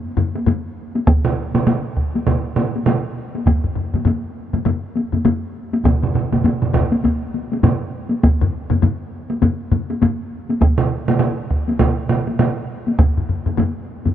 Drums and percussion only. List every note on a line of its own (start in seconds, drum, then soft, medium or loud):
0.17 taiko low-mid medium
0.17 taiko high soft
0.35 taiko high soft
0.46 taiko low-mid medium
0.46 taiko high medium
0.95 taiko high soft
1.07 taiko loud
1.07 taiko high medium
1.25 taiko mid medium
1.55 taiko mid medium
1.55 taiko high soft
1.67 taiko mid medium
1.67 taiko high medium
1.97 taiko medium
2.15 taiko high soft
2.27 taiko medium
2.27 taiko mid medium
2.27 taiko high medium
2.56 taiko mid medium
2.56 taiko high soft
2.76 taiko high soft
2.86 taiko mid medium
2.86 taiko high medium
3.35 taiko high soft
3.46 taiko medium
3.46 taiko low-mid medium
3.46 taiko high medium
3.64 taiko low-mid medium
3.75 taiko low-mid medium
3.94 taiko low-mid medium
3.94 taiko high soft
4.05 taiko low-mid medium
4.05 taiko high medium
4.53 taiko low-mid medium
4.53 taiko high medium
4.65 taiko low-mid medium
4.65 taiko high medium
4.96 taiko high soft
5.12 taiko low-mid medium
5.12 taiko high soft
5.25 taiko low-mid medium
5.25 taiko high medium
5.73 taiko high medium
5.84 taiko medium
5.84 taiko low-mid medium
5.84 taiko mid medium
5.84 taiko high medium
6.03 taiko low-mid medium
6.03 taiko mid medium
6.14 taiko low-mid medium
6.14 taiko mid medium
6.32 taiko low-mid medium
6.32 taiko mid medium
6.32 taiko high soft
6.44 taiko low-mid medium
6.44 taiko mid medium
6.44 taiko high medium
6.62 taiko low-mid medium
6.62 taiko mid medium
6.74 taiko medium
6.74 taiko low-mid medium
6.74 taiko mid medium
6.92 taiko high medium
7.04 taiko medium
7.04 taiko high medium
7.34 taiko high soft
7.52 taiko high soft
7.63 taiko low-mid medium
7.63 taiko mid medium
7.63 taiko high medium
8.11 taiko high soft
8.23 taiko medium
8.23 taiko high medium
8.41 taiko low-mid medium
8.70 taiko low-mid medium
8.70 taiko high soft
8.82 taiko low-mid medium
8.82 taiko high medium
9.30 taiko high soft
9.42 taiko low-mid medium
9.42 taiko high medium
9.72 taiko low-mid medium
9.72 taiko high soft
9.90 taiko high soft
10.02 taiko low-mid medium
10.02 taiko high medium
10.49 taiko high soft
10.61 taiko medium
10.61 taiko high medium
10.78 taiko mid medium
11.08 taiko mid medium
11.08 taiko high soft
11.19 taiko mid medium
11.19 taiko high medium
11.51 taiko medium
11.68 taiko high soft
11.79 taiko medium
11.79 taiko mid medium
11.79 taiko high medium
12.09 taiko mid medium
12.09 taiko high soft
12.27 taiko high soft
12.39 taiko mid medium
12.39 taiko high medium
12.87 taiko high soft
12.99 taiko medium
12.99 taiko low-mid medium
12.99 taiko high medium
13.18 taiko low-mid medium
13.29 taiko low-mid medium
13.46 taiko low-mid medium
13.46 taiko high soft
13.57 taiko low-mid medium
13.57 taiko high medium
14.06 taiko low-mid medium
14.06 taiko high soft